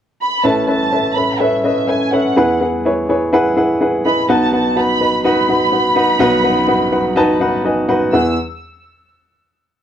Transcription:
0.22 B5
0.44 A1 A2 C#4 A4 B4 E5 A5
0.68 C#4 A4 B4 E5 A5
0.92 C#4 A4 B4 E5
1.15 C#4 A4 B4 E5 B5
1.39 C#4 A4 B4 E5
1.64 C#4 A4 B4 D#5 E5
1.87 C#4 A4 B4 E5 G#5
2.12 C#4 A4 B4 E5 F#5
2.36 E2 E3 E4 G#4 B4 F#5
2.60 E4 G#4 B4 F#5
2.85 E4 G#4 B4 C#5
3.09 E4 G#4 B4 C#5
3.33 E4 G#4 B4 F#5
3.56 E4 G#4 B4 F#5
3.81 E4 G#4 B4 F#5
4.05 E4 G#4 B4 D#5 B5
4.29 B1 B2 D#4 F#4 B4 F#5 A5
4.53 D#4 F#4 B4 F#5 A5
4.76 D#4 F#4 B4 F#5 B5
5.00 D#4 F#4 B4 D#5
5.24 D#4 F#4 B4 F#5 B5
5.49 D#4 F#4 B4 F#5
5.72 D#4 F#4 B4 F#5
5.96 D#4 F#4 B4 F#5
6.19 B1 B2 D#4 F#4 B4 F#5
6.43 D#4 F#4 B4 F#5
6.67 D#4 F#4 B4 F#5
6.92 D#4 F#4 B4 F#5
7.16 D#4 F#4 B4 A5
7.40 D#4 F#4 B4 F#5 B5
7.65 D#4 F#4 B4 D#5 G#5
7.89 D#4 F#4 B4 F#5
8.13 E2 E4 G#4 B4 F#5 E6

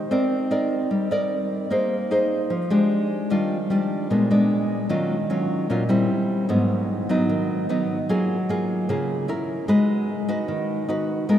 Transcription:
0.11 C4 D#4 A#4 D5
0.51 D#4 A#4 D5
0.91 G3
1.11 D#4 A#4 D5
1.70 A#3 D#4 G#4 C5
2.11 D#4 G#4 C5
2.50 F3
2.70 G#3 D4 G4
3.30 D#3 G3 D4 F4
3.70 G3 D4 F4
4.10 A#2 G#3 B3 D4
4.31 G#3 B3 D4
4.89 D#3 F#3 C#4 F4
5.30 F#3 C#4 F4
5.70 A#2 F#3 C#4 F4
5.89 G3 C4 E4
6.49 G#2 F#3 B3 D#4
7.09 F#3 B3 D#4
7.29 D#3
7.69 F#3 B3 D#4
8.09 F#3 A#3 F4 G#4
8.49 A#3 F4 G#4
8.89 C#3 A#3 F4 G#4
9.28 C#4 E4 A#4
9.68 G#3 D#4 F#4 B4
10.29 D#4 F#4 B4
10.48 D#3
10.88 D#4 F#4 B4
11.29 G#3 B3 F4 A#4

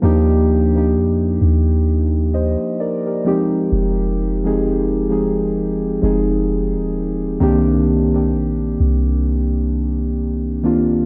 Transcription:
0.02 D#2 F3 A#3 D4 D#4 G4
0.75 F3 A#3 D4 D#4 G4
0.95 F2
1.41 D#2
2.34 C5 D#5
2.80 A#4 D5
3.07 G4 A#4
3.25 F3 G#3 C4 D#4 G4
3.72 F1
4.44 F3 G#3 C4 D#4 G#4
5.09 F3 G#3 C4 D#4 G#4
6.02 F1 F3 G#3 C4 D#4 G#4
6.76 D#1
7.40 C2 D#3 A#3 C4 D4 G4
8.13 D#3 A#3 C4 D4 G4
8.34 A#1
8.80 C2
10.63 D#3 A#3 C4 D4 F4

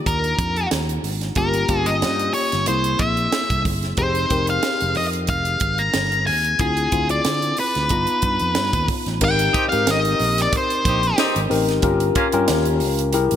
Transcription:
Already playing: A#3 D4 D#4 F4 G4
0.06 D#2 A#4, kick, closed hi-hat
0.24 closed hi-hat
0.39 F2, kick, closed hi-hat
0.56 closed hi-hat
0.71 D#2, snare, closed hi-hat
0.89 closed hi-hat
1.04 G#1, open hi-hat
1.21 snare, closed hi-hat
1.35 G1 A#3 C#4 F4 G4 A#4, kick, closed hi-hat
1.54 closed hi-hat
1.69 G1 A#3 C#4 F4 G4, kick, closed hi-hat
1.86 D#5, closed hi-hat
2.02 G2, snare, closed hi-hat
2.19 closed hi-hat
2.33 C#5, open hi-hat
2.52 G1, snare, closed hi-hat
2.66 C2 A#3 C4 E4 G#4 C5, closed hi-hat
2.84 closed hi-hat
2.99 A#1 E5, kick, closed hi-hat
3.17 closed hi-hat
3.32 snare, closed hi-hat
3.50 C2, kick, closed hi-hat
3.65 G1, kick, open hi-hat
3.83 F#1, snare, closed hi-hat
3.97 F1 C4 D#4 G4 G#4 C5, kick, closed hi-hat
4.15 closed hi-hat
4.30 F1 C4 D#4 G4 A#4, kick, closed hi-hat
4.47 F5, closed hi-hat
4.63 snare, closed hi-hat
4.81 F1, closed hi-hat
4.95 F2 D#5, open hi-hat
5.13 closed hi-hat
5.27 F1 F5, kick, closed hi-hat
5.45 closed hi-hat
5.60 G#1, kick, closed hi-hat
5.78 A#5, closed hi-hat
5.94 G1, snare, closed hi-hat
6.12 closed hi-hat
6.27 D#2 G#5, open hi-hat
6.44 closed hi-hat
6.59 D2 C4 E4 F4 G#4, kick, closed hi-hat
6.77 closed hi-hat
6.92 D2 C4 E4 F4 G#4, kick, closed hi-hat
7.09 D5, closed hi-hat
7.25 D3, snare, closed hi-hat
7.42 closed hi-hat
7.57 B4, open hi-hat
7.75 D2, snare, closed hi-hat
7.89 G1 B3 D#4 F4 A#5, kick, closed hi-hat
8.07 closed hi-hat
8.22 G2, kick, closed hi-hat
8.39 F2, closed hi-hat
8.55 G2, snare, closed hi-hat
8.73 D#2, kick, closed hi-hat
8.88 kick, open hi-hat
9.06 A1, snare, closed hi-hat
9.21 G#1 C4 D#4 G4 A#4 G5, kick, crash
9.39 closed hi-hat
9.53 C4 D#4 G4, kick, closed hi-hat
9.69 G#2 C4 D#4 G4 A#4 F5, closed hi-hat
9.87 G#1 D#5, snare, closed hi-hat
10.05 closed hi-hat
10.19 A#1, open hi-hat
10.38 D5, snare, closed hi-hat
10.53 kick, closed hi-hat
10.57 C5
10.70 closed hi-hat
10.85 A#1 C4 D#4 G4, kick, closed hi-hat
11.03 closed hi-hat
11.16 C4 D#4 G4, snare, closed hi-hat
11.36 G#1, closed hi-hat
11.50 A1 C4 D#4 G4 A#4, open hi-hat
11.69 G#1, snare, closed hi-hat
11.82 G1 C#4 F4 G4 A#4, kick, closed hi-hat
12.00 closed hi-hat
12.15 A#3 C#4 F4, kick, closed hi-hat
12.32 G2 C#4 F4 G4 A#4, closed hi-hat
12.48 D#2, snare, closed hi-hat
12.65 closed hi-hat
12.80 C#2, open hi-hat
12.99 closed hi-hat
13.13 C2 E4 G4 G#4 A#4, closed hi-hat
13.31 A#1, closed hi-hat

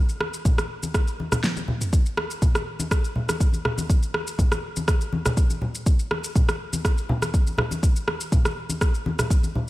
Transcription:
0.09 shaker
0.20 cross-stick, high conga
0.34 shaker
0.45 kick, low conga, shaker
0.57 cross-stick, high conga, shaker
0.83 high conga, shaker
0.94 kick, cross-stick, shaker
1.07 shaker
1.20 high conga
1.32 cross-stick, low conga, shaker
1.44 snare, shaker
1.57 high tom, high conga, shaker
1.68 low conga
1.81 mid tom, shaker
1.93 kick, shaker
2.06 shaker
2.17 cross-stick, high conga
2.31 shaker
2.42 kick, low conga, shaker
2.54 cross-stick, high conga, shaker
2.79 high conga, shaker
2.91 kick, cross-stick, shaker
3.04 shaker
3.16 low conga
3.29 cross-stick, high conga, shaker
3.40 kick, shaker
3.53 high conga, shaker
3.65 cross-stick, low conga
3.78 high conga, shaker
3.90 kick, shaker
4.03 shaker
4.14 cross-stick, high conga
4.27 shaker
4.38 kick, low conga, shaker
4.52 cross-stick, high conga, shaker
4.76 high conga, shaker
4.88 kick, cross-stick, shaker
5.01 shaker
5.13 high conga
5.26 cross-stick, low conga, shaker
5.37 kick, shaker
5.50 high conga, shaker
5.61 low conga
5.75 shaker
5.86 kick, shaker
5.99 shaker
6.11 cross-stick, high conga
6.24 shaker
6.35 kick, low conga, shaker
6.49 cross-stick, high conga, shaker
6.73 high conga, shaker
6.85 kick, cross-stick, shaker
6.98 shaker
7.09 low conga
7.22 cross-stick, high conga, shaker
7.34 kick, shaker
7.47 high conga, shaker
7.58 cross-stick, low conga
7.71 high conga, shaker
7.83 kick, shaker
7.96 shaker
8.08 cross-stick, high conga
8.21 shaker
8.32 kick, low conga, shaker
8.44 cross-stick, high conga, shaker
8.69 high conga, shaker
8.81 kick, cross-stick, shaker
8.94 shaker
9.06 high conga
9.19 cross-stick, low conga, shaker
9.30 kick, shaker
9.43 high conga, shaker
9.55 low conga

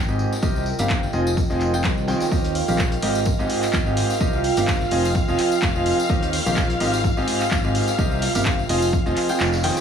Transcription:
Already playing: G#1 F4 A#4 D#5 G5
0.08 G#2 C4 G4 G#4 D#5, tambourine
0.19 tambourine
0.32 snare, tambourine
0.43 C2 C3 C4 G4 A#4 D#5, kick, tambourine
0.56 tambourine
0.66 tambourine
0.79 G1 C3 C4 G4 A#4 F5, closed hi-hat, tambourine
0.89 kick, snare, clap, tambourine
1.03 snare, tambourine
1.13 F1 F3 C4 F4 G#4 D#5, tambourine
1.27 tambourine
1.37 kick, tambourine
1.49 F1 F3 C4 F4 G#4 D#5, snare, tambourine
1.60 clap, tambourine
1.74 F3 C4 F4 G#4 G5, tambourine
1.84 C2, kick, snare, clap, tambourine
1.98 tambourine
2.08 D#3 C4 F4 G#4 G5, snare, tambourine
2.20 snare, tambourine
2.31 D#2 D#3 C4 G4 A#4 D#5 F5 F6, kick, tambourine
2.44 closed hi-hat, tambourine
2.55 open hi-hat, tambourine
2.68 A#1 D#3 C4 G4 A#4 F5, tambourine
2.78 kick, snare, clap, tambourine
2.80 tambourine
2.92 closed hi-hat, tambourine
3.02 G#1 G#2 C4 G4 A#4 D#5, open hi-hat, tambourine
3.15 tambourine
3.25 kick, tambourine
3.38 G#1 G#2 C4 G4 G#4 D#5, snare, tambourine
3.49 open hi-hat, tambourine
3.63 clap, tambourine
3.73 G#1, kick, snare, clap, tambourine
3.86 G#2 C4 G4 G#4 D#5, tambourine
3.97 open hi-hat, tambourine
4.10 snare, tambourine
4.21 C2 C3 C4 G4 A#4 D#5, kick, tambourine
4.33 tambourine
4.44 open hi-hat, tambourine
4.57 G1 C3 C4 G4 A#4 F5, closed hi-hat, open hi-hat, tambourine
4.68 kick, snare, clap, tambourine
4.81 snare, tambourine
4.91 F1 F3 C4 F4 G#4 D#5, open hi-hat, tambourine
5.05 tambourine
5.15 kick, tambourine
5.28 F1 F3 C4 F4 G#4 D#5, snare, tambourine
5.38 clap, open hi-hat, tambourine
5.52 tambourine
5.62 F1, kick, snare, clap, tambourine
5.75 F3 C4 F4 G#4 D#5, tambourine
5.86 open hi-hat, tambourine
6.00 tambourine
6.09 D#2 D#3 C4 G4 A#4 D#5, kick, tambourine
6.22 closed hi-hat, tambourine
6.33 open hi-hat, tambourine
6.46 A#1 D#3 C4 G4 A#4 F5, tambourine
6.56 kick, snare, clap, tambourine
6.70 closed hi-hat, tambourine
6.80 G#1 G#2 C4 G4 A#4 D#5, open hi-hat, tambourine
6.93 tambourine
7.04 kick, tambourine
7.17 G#1 G#2 C4 G4 G#4 D#5, snare, tambourine
7.28 open hi-hat, tambourine
7.40 clap, tambourine
7.51 G#1, kick, snare, clap, tambourine
7.64 G#2 C4 G4 G#4 D#5, tambourine
7.75 open hi-hat, tambourine
7.88 snare, tambourine
7.98 C2 C3 C4 G4 A#4 D#5, kick, tambourine
8.12 tambourine
8.22 snare, open hi-hat, tambourine
8.35 G1 C3 C4 G4 A#4 F5, closed hi-hat, open hi-hat, tambourine
8.45 kick, clap, tambourine
8.59 tambourine
8.69 F1 F3 C4 F4 G#4 D#5, open hi-hat, tambourine
8.82 tambourine
8.93 kick, tambourine
9.06 F1 F3 C4 F4 G#4 D#5, snare, tambourine
9.16 clap, open hi-hat, tambourine
9.29 F3 C4 F4 G#4 G5, tambourine
9.39 F1, snare, clap, tambourine
9.41 tambourine
9.52 snare, tambourine
9.63 D#3 C4 F4 G#4 G5, snare, open hi-hat, tambourine
9.70 snare, tambourine
9.76 snare, tambourine

